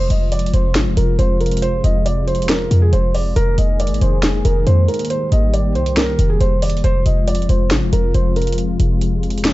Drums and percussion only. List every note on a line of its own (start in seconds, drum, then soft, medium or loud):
0.10 closed hi-hat medium
0.32 closed hi-hat medium
0.39 closed hi-hat medium
0.46 closed hi-hat soft
0.54 closed hi-hat medium
0.75 snare loud
0.75 closed hi-hat medium
0.97 closed hi-hat medium
1.19 closed hi-hat medium
1.41 closed hi-hat soft
1.46 closed hi-hat medium
1.51 closed hi-hat medium
1.57 closed hi-hat medium
1.62 closed hi-hat medium
1.84 closed hi-hat medium
2.06 closed hi-hat medium
2.28 closed hi-hat soft
2.35 closed hi-hat medium
2.42 closed hi-hat medium
2.49 snare loud
2.49 closed hi-hat medium
2.71 closed hi-hat medium
2.93 closed hi-hat medium
3.14 open hi-hat medium
3.36 closed hi-hat medium
3.58 closed hi-hat medium
3.80 closed hi-hat medium
3.87 closed hi-hat medium
3.94 closed hi-hat soft
4.01 closed hi-hat medium
4.23 snare loud
4.23 closed hi-hat medium
4.45 closed hi-hat medium
4.67 closed hi-hat medium
4.88 closed hi-hat soft
4.94 closed hi-hat medium
4.99 closed hi-hat medium
5.05 closed hi-hat medium
5.10 closed hi-hat medium
5.32 closed hi-hat medium
5.54 closed hi-hat medium
5.75 closed hi-hat soft
5.86 closed hi-hat medium
5.97 snare loud
5.97 closed hi-hat medium
6.19 closed hi-hat medium
6.41 closed hi-hat medium
6.62 closed hi-hat medium
6.62 open hi-hat medium
6.70 closed hi-hat medium
6.77 closed hi-hat soft
6.84 closed hi-hat medium
7.06 closed hi-hat medium
7.28 closed hi-hat medium
7.35 closed hi-hat medium
7.42 closed hi-hat soft
7.49 closed hi-hat medium
7.71 snare loud
7.71 closed hi-hat medium
7.93 closed hi-hat medium
8.14 closed hi-hat medium
8.36 closed hi-hat soft
8.42 closed hi-hat medium
8.47 closed hi-hat medium
8.53 closed hi-hat medium
8.58 closed hi-hat medium
8.80 closed hi-hat medium
9.01 closed hi-hat medium
9.23 closed hi-hat soft
9.30 closed hi-hat medium
9.38 closed hi-hat medium
9.45 snare loud
9.45 closed hi-hat medium